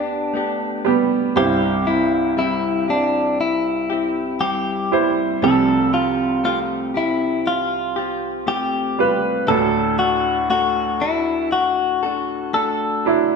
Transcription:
Already playing: grand piano D2 D3, clean electric guitar B3 D4 G4
0.34 clean electric guitar A3 B3 D4 G4
0.85 grand piano G3 B3 G4
1.36 grand piano C2 G2 G3 E4 C5, clean electric guitar C3 G3 C4 E4 G4
1.86 clean electric guitar C4 E4 G4
2.37 clean electric guitar G3 C4 E4 G4
2.88 clean electric guitar C4 D4 E4 G4
3.41 clean electric guitar E4
3.90 clean electric guitar C4 E4 G4
4.41 clean electric guitar G3 C4 E4 G4
4.92 grand piano G3 E4 C5
5.42 grand piano C2 C3 F3 G3 A4, clean electric guitar C3 A3 C4 F4 G4 A4
5.93 clean electric guitar C4 F4 G4
6.44 clean electric guitar A3 C4 F4 G4
6.94 clean electric guitar C4 E4 G4
7.47 clean electric guitar F4
7.96 clean electric guitar C4 F4 G4
8.47 clean electric guitar A3 C4 F4 G4
8.99 grand piano G3 F4 B4
9.48 grand piano D2 A2 F#3 D4 A4, clean electric guitar D3 A3 D4 F#4 A4
9.99 clean electric guitar D4 F#4 A4
10.50 clean electric guitar A3 D4 F#4 A4
11.01 clean electric guitar D4 E4 F#4 A4
11.52 clean electric guitar F#4
12.03 clean electric guitar D4 F#4 A4
12.53 clean electric guitar A3 D4 F#4 A4
13.05 grand piano F#3 D4 E4

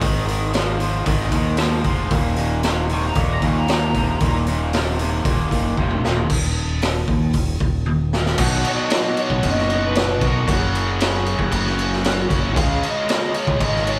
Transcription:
Already playing: lead electric guitar G#4
0.01 fingered electric bass G#1, overdriven electric guitar G#2 D#3, kick, open hi-hat
0.26 overdriven electric guitar G#2 D#3, open hi-hat
0.53 overdriven electric guitar G#2 F3, snare, open hi-hat
0.78 overdriven electric guitar G#2 F3, open hi-hat
1.05 fingered electric bass G#1, overdriven electric guitar G#2 D#3, kick, open hi-hat
1.20 snare
1.31 fingered electric bass D#2, overdriven electric guitar G#2 D#3, kick, open hi-hat
1.57 overdriven electric guitar G#2 F3, snare, open hi-hat
1.84 fingered electric bass F1, overdriven electric guitar G#2 F3, kick, open hi-hat
2.10 fingered electric bass D#1, overdriven electric guitar D#2 A#2, kick, open hi-hat
2.36 overdriven electric guitar D#2 A#2, open hi-hat
2.63 overdriven electric guitar D#2 C3, snare, open hi-hat
2.89 overdriven electric guitar D#2 C3, open hi-hat
2.94 lead electric guitar C#6
3.07 lead electric guitar A#5
3.15 fingered electric bass D#1, overdriven electric guitar D#2 A#2, kick, open hi-hat
3.20 lead electric guitar C#6
3.32 lead electric guitar A#5
3.42 fingered electric bass D#2, overdriven electric guitar D#2 A#2, kick, open hi-hat
3.47 lead electric guitar C#6
3.59 lead electric guitar A#5
3.68 overdriven electric guitar D#2 C3, lead electric guitar A#5, snare, open hi-hat
3.94 fingered electric bass D#1, overdriven electric guitar D#2 C3, kick, open hi-hat
4.20 fingered electric bass D#1, overdriven electric guitar D#2 A#2, kick, open hi-hat
4.46 overdriven electric guitar D#2 A#2, open hi-hat
4.73 overdriven electric guitar D#2 C3, snare, open hi-hat
4.98 overdriven electric guitar D#2 C3, open hi-hat
5.25 fingered electric bass D#1, overdriven electric guitar D#2 A#2, kick, open hi-hat
5.51 fingered electric bass F#1, overdriven electric guitar D#2 A#2, kick, open hi-hat
5.77 fingered electric bass F1, overdriven electric guitar D#2 C3, kick
5.90 mid tom
6.04 fingered electric bass D#1, overdriven electric guitar D#2 C3, snare
6.16 floor tom
6.30 fingered electric bass D#1, kick, crash
6.82 snare, open hi-hat
7.08 fingered electric bass D#2, kick
7.33 fingered electric bass D#1, kick, open hi-hat
7.60 fingered electric bass D#1, kick
7.86 high tom
8.13 snare
8.26 snare
8.38 fingered electric bass B1, overdriven electric guitar B2 F#3 B3 D#4 F#4, lead electric guitar F#5, kick, crash
8.64 lead electric guitar D#5, crash
8.90 snare, crash
9.17 lead electric guitar C#5, crash
9.30 fingered electric bass B1, kick
9.43 fingered electric bass F#1, kick, crash
9.47 lead electric guitar D#5
9.58 snare
9.70 crash
9.85 lead electric guitar B4
9.95 snare, crash
10.21 fingered electric bass B1, overdriven electric guitar B2 F#3 B3 D#4 F#4, kick, crash
10.26 lead electric guitar A#4
10.46 fingered electric bass F#1, overdriven electric guitar F#2 C#3 F#3 C#4 F#4, kick, crash
10.53 lead electric guitar G#4
10.75 crash
11.00 snare, crash
11.26 crash
11.39 fingered electric bass F#1, kick
11.52 fingered electric bass F#1, lead electric guitar F#4, kick, crash
11.67 snare
11.79 crash
11.93 snare
12.04 snare, crash
12.29 fingered electric bass F#1, overdriven electric guitar F#2 C#3 F#3 C#4 F#4, kick, crash
12.55 fingered electric bass C#2, overdriven electric guitar C#3 G#3 C#4 F4 G#4, lead electric guitar F5, kick, crash
12.83 lead electric guitar D#5, crash
13.09 snare, crash
13.34 lead electric guitar C#5, crash
13.47 fingered electric bass C#2, kick
13.60 fingered electric bass G#1, lead electric guitar D#5, kick, crash
13.75 snare
13.87 lead electric guitar C#5, crash

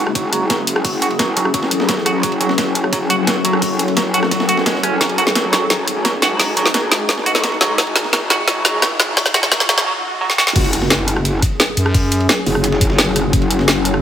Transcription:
Already playing: wobble bass F#1, synth drone F#3 C#4 G#4, riser
0.07 cross-stick
0.15 clean electric guitar F#3, kick, closed hi-hat, ride
0.33 wobble bass F#1, clean electric guitar F#3, closed hi-hat, ride
0.50 clean electric guitar F#3, kick, snare, closed hi-hat, ride
0.67 closed hi-hat, ride
0.76 cross-stick
0.85 wobble bass F#1, clean electric guitar F#3, kick, closed hi-hat, open hi-hat
1.02 clean electric guitar F#4, closed hi-hat, ride
1.11 ride
1.19 clean electric guitar F#3, kick, snare, closed hi-hat, ride
1.37 clean electric guitar F#3, closed hi-hat, ride
1.45 cross-stick
1.54 clean electric guitar F#3, kick, closed hi-hat, ride
1.63 snare
1.71 wobble bass A1, closed hi-hat, ride
1.80 snare
1.89 clean electric guitar F#3, kick, snare, closed hi-hat, ride
1.97 snare
2.06 clean electric guitar F#4, cross-stick, closed hi-hat, ride
2.23 wobble bass F#1, clean electric guitar F#3, synth drone A4, kick, closed hi-hat, ride
2.32 ride
2.41 clean electric guitar F#3, closed hi-hat, ride
2.49 snare
2.58 clean electric guitar F#3, kick, snare, closed hi-hat, ride
2.75 closed hi-hat, ride
2.84 cross-stick
2.93 clean electric guitar F#3, kick, closed hi-hat, ride
3.10 wobble bass F#1, clean electric guitar F#4, closed hi-hat, ride
3.27 clean electric guitar F#3, kick, snare, closed hi-hat, ride
3.45 clean electric guitar F#3, closed hi-hat, ride
3.53 cross-stick
3.62 wobble bass F#1, clean electric guitar F#3, kick, closed hi-hat, open hi-hat
3.79 closed hi-hat, ride
3.88 ride
3.97 clean electric guitar F#3, kick, snare, closed hi-hat, ride
4.14 clean electric guitar F#4, closed hi-hat, ride
4.22 wobble bass F1, cross-stick, snare
4.31 clean electric guitar F#3, kick, closed hi-hat, ride
4.40 snare
4.49 wobble bass F#1, clean electric guitar F#4, closed hi-hat, ride
4.57 snare
4.66 clean electric guitar G#3, kick, snare, closed hi-hat, ride
4.75 snare
4.83 clean electric guitar C#4, cross-stick, closed hi-hat, ride
5.01 wobble bass G#1, clean electric guitar F#3, synth drone G#3 D#4 G#4, kick, snare, closed hi-hat, ride
5.09 ride
5.18 clean electric guitar F#4, closed hi-hat, ride
5.27 snare
5.35 clean electric guitar F#3, kick, snare, closed hi-hat, ride
5.53 clean electric guitar F#3, snare, closed hi-hat, ride
5.70 clean electric guitar F#3, kick, snare, closed hi-hat, ride
5.87 wobble bass G#1, closed hi-hat, ride
6.05 clean electric guitar F#3, kick, snare, closed hi-hat, ride
6.22 clean electric guitar F#4, snare, closed hi-hat, ride
6.39 wobble bass G#1, clean electric guitar F#3, kick, snare, closed hi-hat, open hi-hat
6.57 clean electric guitar F#3, closed hi-hat, ride
6.66 snare, ride
6.74 clean electric guitar F#3, kick, snare, closed hi-hat, ride
6.92 snare, closed hi-hat, ride
7.09 clean electric guitar F#3, kick, snare, closed hi-hat, ride
7.18 snare
7.26 wobble bass B1, clean electric guitar F#4, closed hi-hat, ride
7.35 snare
7.44 clean electric guitar F#3, kick, snare, closed hi-hat, ride
7.52 snare
7.61 clean electric guitar F#3, snare, closed hi-hat, ride
7.78 wobble bass G#1, clean electric guitar F#3, kick, snare, closed hi-hat, ride
7.87 ride
7.96 snare, closed hi-hat, ride
8.04 snare
8.13 clean electric guitar F#3, kick, snare, closed hi-hat, ride
8.30 clean electric guitar F#4, snare, closed hi-hat, ride
8.48 clean electric guitar F#3, kick, snare, closed hi-hat, ride
8.65 wobble bass G#1, clean electric guitar F#3, snare, closed hi-hat, ride
8.82 clean electric guitar F#3, kick, snare, closed hi-hat, ride
9.00 snare, closed hi-hat, ride
9.17 clean electric guitar F#3, kick, snare, closed hi-hat, open hi-hat
9.26 snare
9.34 wobble bass G#1, clean electric guitar F#4, snare, closed hi-hat, ride
9.43 snare, ride
9.52 clean electric guitar F#3, kick, snare, closed hi-hat, ride
9.60 snare
9.69 wobble bass G#1, clean electric guitar F#3, snare, closed hi-hat, ride
9.78 snare
9.86 clean electric guitar F#3, swell
10.21 clean electric guitar F#3
10.30 snare
10.38 clean electric guitar F#4, snare
10.47 snare
10.56 wobble bass F#1, synth drone F#3 C#4 G#4, kick, closed hi-hat, crash, ride, impact
10.64 ride
10.73 closed hi-hat, ride
10.82 snare
10.90 snare, closed hi-hat, ride
11.08 closed hi-hat, ride
11.16 cross-stick
11.25 closed hi-hat, ride
11.42 kick, closed hi-hat, ride
11.60 snare, closed hi-hat, ride
11.77 fm bass F#2, closed hi-hat, ride
11.86 cross-stick
11.94 kick, closed hi-hat, open hi-hat
12.12 closed hi-hat, ride
12.20 ride
12.29 snare, closed hi-hat, ride
12.46 wobble bass F#1, open hi-hat, ride
12.55 cross-stick
12.64 closed hi-hat, ride
12.72 snare
12.81 kick, closed hi-hat, ride
12.90 snare
12.98 snare, closed hi-hat, ride
13.07 snare
13.16 cross-stick, closed hi-hat, ride
13.33 wobble bass F#1, synth drone A4, kick, closed hi-hat, ride
13.42 ride
13.50 closed hi-hat, ride
13.59 snare
13.68 snare, closed hi-hat, ride
13.85 closed hi-hat, ride
13.94 cross-stick

